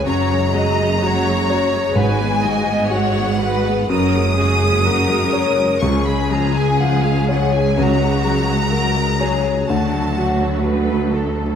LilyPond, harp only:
\new Staff \with { instrumentName = "Harp" } { \time 4/4 \key fis \major \tempo 4 = 62 <fis, gis cis''>8 gis8 fis'8 cis''8 gis,8 gis8 fis'8 b'8 | fis,8 gis8 fis'8 cis''8 cis8 gis8 eis'8 cis''8 | cis8 gis8 fis'8 cis''8 d8 fis8 fis'8 a'8 | }